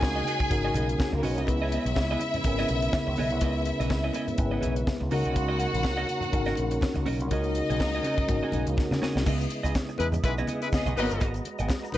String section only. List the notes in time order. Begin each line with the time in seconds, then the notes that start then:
Already playing: G#4 G#5
1.16 A#3 A#4
1.22 B3 B4
1.32 C#4 C#5
1.39 D#4 D#5
1.47 E4 E5
5.11 F#4 F#5
7.30 D#4 D#5
10.74 B3 G#4 D#5
10.98 B3 A#4 D#5